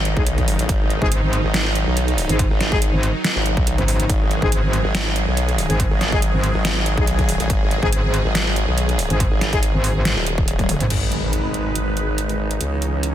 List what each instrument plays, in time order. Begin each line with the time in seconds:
Already playing: wobble bass G#1, supersaw synth D#3 F#3 D#4
0.05 closed hi-hat
0.17 wobble bass B1, brass ensemble G#3 D#4 G#4, kick
0.27 closed hi-hat
0.38 kick, closed hi-hat
0.48 open hi-hat
0.59 wobble bass A1, closed hi-hat
0.69 wobble bass G#1, kick, closed hi-hat
0.90 closed hi-hat
1.02 wobble bass G#1, brass ensemble G#3 D#4 G#4, kick
1.12 closed hi-hat
1.23 wobble bass G#1
1.33 closed hi-hat
1.44 wobble bass G#1
1.54 snare, closed hi-hat
1.75 closed hi-hat
1.87 wobble bass B1
1.97 closed hi-hat
2.08 closed hi-hat
2.18 open hi-hat
2.29 wobble bass G#1, brass ensemble G#3 D#4 G#4, closed hi-hat
2.39 kick, closed hi-hat
2.51 wobble bass G#1
2.61 snare, closed hi-hat
2.72 brass ensemble G#3 D#4 G#4, kick
2.82 closed hi-hat
2.93 wobble bass G#1
3.03 closed hi-hat
3.24 snare, closed hi-hat
3.36 wobble bass G#1
3.46 closed hi-hat
3.57 wobble bass B1, kick
3.67 closed hi-hat
3.78 wobble bass G#1, kick, closed hi-hat
3.88 open hi-hat
4.00 closed hi-hat
4.10 wobble bass G#1, supersaw synth G#4, kick, closed hi-hat
4.31 closed hi-hat
4.42 wobble bass G#1, brass ensemble G#3 D#4 G#4, kick
4.52 closed hi-hat
4.63 wobble bass G#1
4.73 closed hi-hat
4.85 wobble bass G#1
4.95 snare, closed hi-hat
5.16 closed hi-hat
5.27 wobble bass B1
5.37 closed hi-hat
5.49 closed hi-hat
5.58 open hi-hat
5.70 wobble bass G#1, brass ensemble G#3 D#4 G#4, closed hi-hat
5.80 kick, closed hi-hat
5.91 wobble bass G#1
6.01 snare, closed hi-hat
6.12 brass ensemble G#3 D#4 G#4, kick
6.22 closed hi-hat
6.34 wobble bass G#1
6.44 closed hi-hat
6.55 wobble bass G#1
6.65 snare, closed hi-hat
6.86 closed hi-hat
6.97 wobble bass B1, brass ensemble G#3 D#4 G#4, kick
7.07 closed hi-hat
7.19 kick, closed hi-hat
7.29 open hi-hat
7.40 wobble bass A1, closed hi-hat
7.50 wobble bass G#1, kick, closed hi-hat
7.71 closed hi-hat
7.83 wobble bass G#1, brass ensemble G#3 D#4 G#4, kick
7.93 closed hi-hat
8.04 wobble bass G#1
8.14 closed hi-hat
8.25 wobble bass G#1
8.35 snare, closed hi-hat
8.56 closed hi-hat
8.68 wobble bass B1
8.78 closed hi-hat
8.89 closed hi-hat
8.99 open hi-hat
9.10 wobble bass G#1, brass ensemble G#3 D#4 G#4, closed hi-hat
9.20 kick, closed hi-hat
9.32 wobble bass G#1
9.41 snare, closed hi-hat
9.53 brass ensemble G#3 D#4 G#4, kick, closed hi-hat
9.63 closed hi-hat
9.74 wobble bass G#1
9.84 open hi-hat
9.95 wobble bass G#1
10.05 snare, closed hi-hat
10.17 wobble bass D#1
10.27 closed hi-hat
10.38 kick
10.48 closed hi-hat
10.59 kick, closed hi-hat, high tom
10.69 open hi-hat, mid tom
10.80 wobble bass G#1, closed hi-hat, mid tom
10.90 wobble bass G#1, supersaw synth G#3 D#4 B4, closed hi-hat, crash, impact
11.12 closed hi-hat
11.33 closed hi-hat
11.54 closed hi-hat
11.76 closed hi-hat
11.97 closed hi-hat
12.18 closed hi-hat
12.29 closed hi-hat
12.51 closed hi-hat
12.61 wobble bass C#2, supersaw synth E3 C#4, closed hi-hat
12.82 closed hi-hat
13.03 closed hi-hat